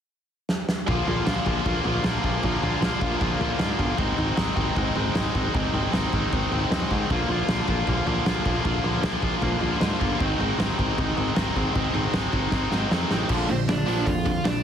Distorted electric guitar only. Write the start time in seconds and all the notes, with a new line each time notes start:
0.87 A#2 D3 F3 A#3 F4
1.07 A#2 D3 F3 A#3 F4
1.25 A#2 D3 F3 A#3 F4
1.46 A#2 D3 F3 A#3 F4
1.65 A#2 D3 F3 A#3 F4
1.84 A#2 D3 F3 A#3 F4
2.04 A#2 D3 F3 A#3 F4
2.23 A#2 D3 F3 A#3 F4
2.43 A#2 D3 F3 A#3 F4
2.62 A#2 D3 F3 A#3 F4
2.80 A#2 D3 F3 A#3 F4
3.01 A#2 D3 F3 A#3 F4
3.20 A#2 D3 F3 A#3 F4
3.40 A#2 D3 F3 A#3 F4
3.57 A#2 D3 F3 A#3 F4
3.76 A#2 D3 F3 A#3 F4
3.97 G#2 D#3 G#3 C4 D#4
4.16 G#2 D#3 G#3 C4 D#4
4.36 G#2 D#3 G#3 C4 D#4
4.55 G#2 D#3 G#3 C4 D#4
4.76 G#2 D#3 G#3 C4 D#4
4.95 G#2 D#3 G#3 C4 D#4
5.15 G#2 D#3 G#3 C4 D#4
5.35 G#2 D#3 G#3 C4 D#4
5.53 G#2 D#3 G#3 C4 D#4
5.73 G#2 D#3 G#3 C4 D#4
5.92 G#2 D#3 G#3 C4 D#4
6.13 G#2 D#3 G#3 C4 D#4
6.32 G#2 D#3 G#3 C4 D#4
6.52 G#2 D#3 G#3 C4 D#4
6.71 G#2 D#3 G#3 C4 D#4
6.90 G#2 D#3 G#3 C4 D#4
7.10 A#2 D3 F3 A#3 F4
7.30 A#2 D3 F3 A#3 F4
7.48 A#2 D3 F3 A#3 F4
7.68 A#2 D3 F3 A#3 F4
7.87 A#2 D3 F3 A#3 F4
8.06 A#2 D3 F3 A#3 F4
8.26 A#2 D3 F3 A#3 F4
8.45 A#2 D3 F3 A#3 F4
8.63 A#2 D3 F3 A#3 F4
8.83 A#2 D3 F3 A#3 F4
9.03 A#2 D3 F3 A#3 F4
9.22 A#2 D3 F3 A#3 F4
9.41 A#2 D3 F3 A#3 F4
9.60 A#2 D3 F3 A#3 F4
9.80 A#2 D3 F3 A#3 F4
9.99 A#2 D3 F3 A#3 F4
10.19 G#2 D#3 G#3 C4 D#4
10.37 G#2 D#3 G#3 C4 D#4
10.58 G#2 D#3 G#3 C4 D#4
10.78 G#2 D#3 G#3 C4 D#4
10.98 G#2 D#3 G#3 C4 D#4
11.17 G#2 D#3 G#3 C4 D#4
11.35 G#2 D#3 G#3 C4 D#4
11.55 G#2 D#3 G#3 C4 D#4
11.74 G#2 D#3 G#3 C4 D#4
11.93 G#2 D#3 G#3 C4 D#4
12.13 G#2 D#3 G#3 C4 D#4
12.32 G#2 D#3 G#3 C4 D#4
12.52 G#2 D#3 G#3 C4 D#4
12.71 G#2 D#3 G#3 C4 D#4
12.91 G#2 D#3 G#3 C4 D#4
13.10 G#2 D#3 G#3 C4 D#4
13.29 A#2 D3 F3
13.49 A#2 D3
13.68 A#2 D3
13.86 A#2 D3 F3
14.07 A#2 D3
14.25 A#2 D3
14.44 A#2 D3